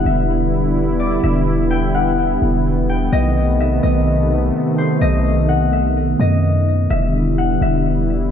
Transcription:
Already playing: analog synth pad D3 G3 B3 E4, harp F#5
0.05 808-style bass E1, harp E5
1.00 harp D5
1.24 808-style bass E1, harp E5
1.71 harp G5
1.95 harp F#5
2.42 808-style bass E1
2.89 harp G5
3.13 808-style bass B1, analog synth pad C3 D#3 A3, harp D#5
3.60 harp E5
3.83 808-style bass B1, harp D#5
4.78 harp C5
5.01 808-style bass B1, harp D#5
5.49 harp F#5
5.73 harp E5
6.20 808-style bass F#2, harp D#5
6.90 808-style bass E1, analog synth pad D3 G3 B3 E4, harp E5
7.38 harp F#5
7.61 808-style bass E1, harp E5

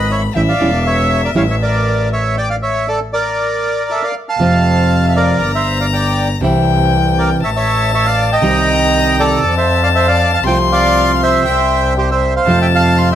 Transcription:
Already playing: double bass G#1, bandoneon D#5, violin B5
0.10 bandoneon C#5 E5
0.35 double bass A1, nylon-string guitar E3 G3 C#4 E4, violin E5, bandoneon E5 G5
0.49 bandoneon D5 F5
0.60 double bass E1, nylon-string guitar E3 G3 C#4 E4
0.86 bandoneon C#5 E5
1.25 bandoneon A#4 D5
1.35 double bass A1, nylon-string guitar E3 G3 C#4 E4, bandoneon C#5 F5
1.50 bandoneon C#5 E5
1.62 bandoneon A#4 D5
2.13 bandoneon C#5 E5
2.37 bandoneon D5 G5
2.50 bandoneon D5 F5
2.62 bandoneon C#5 E5
2.88 bandoneon A4 D5
3.13 bandoneon A#4 D5
3.90 bandoneon A4 E5
4.03 bandoneon D5 F5
4.29 bandoneon F5 A5
4.39 double bass F2, nylon-string guitar C3 F3 A3 C4 F4, violin F5
5.09 bandoneon E5
5.16 bandoneon A#4 D5
5.40 double bass G1, violin A#5
5.55 bandoneon C5 E5
5.80 bandoneon D5 F5
5.93 bandoneon D5 G5
6.41 double bass C2, nylon-string guitar C3 E3 G3 C4 E4, violin G5
7.18 bandoneon A#4 D5
7.43 double bass A1, bandoneon C#5 E5, violin A5
7.56 bandoneon C#5 E5
7.94 bandoneon C#5 E5
8.06 bandoneon D5 F5
8.32 bandoneon D#5 G5
8.41 double bass C2, nylon-string guitar C3 D#3 G3 C4 G4, violin A#5
9.20 bandoneon A4 D5
9.43 double bass F2, violin A5
9.57 bandoneon C5 E5
9.83 bandoneon D5 F5
9.95 bandoneon C5 E5
10.08 bandoneon D5 F5
10.34 bandoneon F5 A5
10.44 double bass C2, nylon-string guitar C3 F3 A3 C4, bandoneon C5 G5, violin C6
10.48 nylon-string guitar F4
10.72 bandoneon D5 F5
11.15 bandoneon F5
11.23 bandoneon C5 E5
11.45 double bass C2, violin G5
11.98 bandoneon G4 C5
12.11 bandoneon C5 E5
12.36 bandoneon C5 F5
12.46 double bass F2, nylon-string guitar C3 F3 A3 C4 F4, violin A5
12.62 bandoneon E5 G5
12.75 bandoneon F5 A5
12.98 violin C6

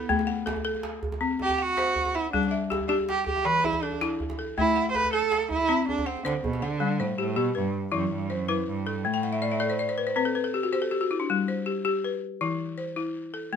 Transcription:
Already playing: cello B3, balafon A4
0.09 balafon A3, djembe tone, djembe bass
0.19 djembe slap
0.27 balafon F#5, djembe slap
0.46 balafon A4, djembe slap, djembe tone
0.56 djembe bass
0.65 balafon A4
0.75 djembe tone
0.83 djembe slap
1.03 djembe bass
1.12 djembe slap, djembe tone
1.21 balafon C4
1.31 djembe slap
1.39 cello G4, djembe tone
1.49 djembe slap, djembe bass
1.53 cello G4
1.58 cello F#4, balafon F#5
1.77 balafon C5, djembe slap
1.96 djembe slap, djembe bass
2.05 djembe slap, djembe tone
2.15 cello E4, balafon F#5
2.33 balafon G3, cello D4, djembe tone, djembe bass
2.43 djembe slap
2.51 balafon E5, djembe slap
2.70 balafon G4, djembe slap, djembe tone
2.80 djembe bass
2.88 cello D4, balafon G4
2.99 djembe tone
3.09 cello G4, djembe slap
3.27 cello G4, djembe bass
3.36 djembe slap, djembe tone
3.45 balafon E3, cello B4
3.55 djembe slap
3.64 cello E4, djembe tone
3.73 djembe slap, djembe bass
3.83 cello D4, balafon A4
3.92 djembe tone
4.01 balafon E4, djembe slap
4.20 djembe slap, djembe bass
4.30 djembe slap, djembe tone
4.39 balafon A4, djembe slap
4.58 balafon A3, cello E4, djembe slap, djembe tone, djembe bass
4.67 djembe slap
4.76 balafon F#5, djembe slap
4.91 cello C5, djembe tone
4.95 balafon A4, cello B4
5.04 djembe slap, djembe bass
5.13 balafon A4, cello A4, djembe slap
5.22 djembe tone
5.32 djembe slap
5.50 cello E4, djembe slap, djembe bass
5.60 djembe tone
5.69 balafon C4
5.89 cello D4, djembe tone
5.98 djembe slap, djembe bass
6.06 cello C4, balafon F#5
6.17 djembe tone
6.25 cello D3, balafon C5, djembe slap
6.44 cello B2, djembe bass
6.53 djembe slap, djembe tone
6.62 cello D3, balafon F#5
6.72 djembe slap
6.80 balafon G3
7.00 cello A2, balafon C5
7.18 cello A2, balafon G4
7.36 cello B2, balafon G4
7.55 cello G2, balafon B4
7.92 cello F#2, balafon E3 E4
8.12 cello G2
8.30 cello F#2, balafon C5
8.48 balafon E4 B4
8.68 cello G2
8.87 balafon A4
9.05 cello A2, balafon A3
9.14 balafon G5
9.23 balafon F#5
9.33 balafon E5
9.42 balafon D5
9.52 balafon E5
9.60 balafon A4 D5
9.70 balafon C5
9.79 balafon D5
9.89 balafon C5
9.98 balafon B4
10.07 balafon C5
10.16 balafon C4 B4
10.25 balafon A4
10.35 balafon B4
10.44 balafon A4
10.54 balafon G4
10.63 balafon F#4
10.73 balafon G4 C5
10.82 balafon A4
10.91 balafon G4
11.01 balafon F#4
11.11 balafon E4
11.20 balafon D4
11.30 balafon G3
11.48 balafon C5
11.66 balafon G4
11.85 balafon G4
12.04 balafon B4
12.41 balafon E3 E4
12.78 balafon C5
12.96 balafon E4
13.34 balafon A4
13.53 balafon A3

